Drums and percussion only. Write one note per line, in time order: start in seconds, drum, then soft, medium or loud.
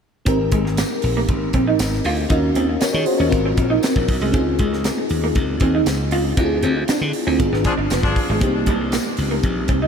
0.26 kick loud
0.26 closed hi-hat loud
0.52 kick medium
0.52 closed hi-hat medium
0.66 snare soft
0.77 snare loud
0.77 closed hi-hat medium
0.77 tambourine medium
1.02 open hi-hat medium
1.29 kick medium
1.29 closed hi-hat medium
1.53 kick medium
1.53 closed hi-hat medium
1.79 snare loud
1.79 closed hi-hat medium
1.79 tambourine medium
1.93 snare soft
2.04 open hi-hat medium
2.30 kick loud
2.30 closed hi-hat loud
2.55 closed hi-hat medium
2.81 snare loud
2.81 closed hi-hat medium
2.81 tambourine medium
3.06 open hi-hat medium
3.32 kick medium
3.32 closed hi-hat medium
3.57 kick medium
3.57 closed hi-hat medium
3.83 snare loud
3.83 closed hi-hat loud
3.83 tambourine medium
3.96 kick medium
4.08 kick medium
4.08 open hi-hat medium
4.34 kick loud
4.34 closed hi-hat loud
4.59 kick medium
4.59 closed hi-hat medium
4.73 snare soft
4.84 snare loud
4.84 closed hi-hat medium
4.84 tambourine medium
5.09 open hi-hat medium
5.35 kick medium
5.35 closed hi-hat medium
5.60 kick medium
5.60 closed hi-hat medium
5.86 snare loud
5.86 closed hi-hat medium
5.86 tambourine medium
6.11 open hi-hat medium
6.37 kick loud
6.37 closed hi-hat loud
6.63 closed hi-hat medium
6.88 snare loud
6.88 closed hi-hat medium
6.88 tambourine medium
7.13 open hi-hat medium
7.40 kick medium
7.40 closed hi-hat medium
7.54 snare soft
7.64 kick medium
7.64 closed hi-hat medium
7.90 snare loud
7.90 closed hi-hat medium
7.90 tambourine medium
8.03 kick medium
8.03 snare soft
8.16 kick medium
8.16 open hi-hat medium
8.41 kick loud
8.41 closed hi-hat loud
8.66 kick medium
8.66 closed hi-hat medium
8.92 snare loud
8.92 closed hi-hat loud
8.92 tambourine medium
9.17 open hi-hat medium
9.43 kick medium
9.43 closed hi-hat medium
9.68 kick medium
9.68 closed hi-hat medium